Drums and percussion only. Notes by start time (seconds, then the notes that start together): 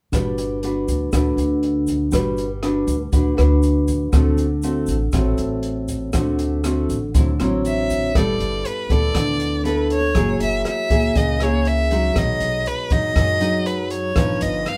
0.13 kick, cross-stick, closed hi-hat, shaker
0.38 closed hi-hat, shaker
0.63 closed hi-hat
0.88 kick, closed hi-hat, shaker
1.12 kick, cross-stick, closed hi-hat, shaker
1.38 closed hi-hat, shaker
1.63 closed hi-hat
1.87 kick, closed hi-hat, shaker
2.12 kick, cross-stick, closed hi-hat, shaker
2.37 closed hi-hat, shaker
2.63 cross-stick, closed hi-hat
2.88 kick, closed hi-hat, shaker
3.13 kick, closed hi-hat, shaker
3.38 cross-stick, closed hi-hat, shaker
3.63 closed hi-hat, shaker
3.88 kick, closed hi-hat, shaker
4.13 kick, cross-stick, closed hi-hat, shaker
4.37 closed hi-hat, shaker
4.62 closed hi-hat, shaker
4.87 kick, closed hi-hat, shaker
5.12 kick, cross-stick, closed hi-hat, shaker
5.37 closed hi-hat, shaker
5.63 closed hi-hat
5.88 kick, closed hi-hat, shaker
6.13 kick, cross-stick, closed hi-hat, shaker
6.39 closed hi-hat, shaker
6.64 cross-stick, closed hi-hat, shaker
6.89 kick, closed hi-hat, shaker
7.15 kick, closed hi-hat, shaker
7.40 cross-stick, closed hi-hat, shaker
7.65 closed hi-hat, shaker
7.90 kick, closed hi-hat, shaker
8.15 kick, cross-stick, closed hi-hat
8.40 closed hi-hat
8.65 closed hi-hat
8.90 kick, closed hi-hat
9.15 kick, cross-stick, closed hi-hat
9.40 closed hi-hat
9.65 closed hi-hat
9.90 closed hi-hat
10.15 kick, cross-stick, closed hi-hat
10.40 closed hi-hat
10.65 cross-stick, closed hi-hat
10.90 kick, closed hi-hat
11.15 kick, closed hi-hat
11.40 cross-stick, closed hi-hat
11.65 closed hi-hat
11.91 closed hi-hat
12.16 kick, cross-stick, closed hi-hat
12.40 closed hi-hat
12.66 closed hi-hat
12.90 kick, closed hi-hat
13.16 kick, cross-stick, closed hi-hat
13.41 closed hi-hat
13.66 closed hi-hat
13.90 closed hi-hat
14.16 kick, cross-stick, closed hi-hat
14.41 closed hi-hat
14.66 cross-stick, closed hi-hat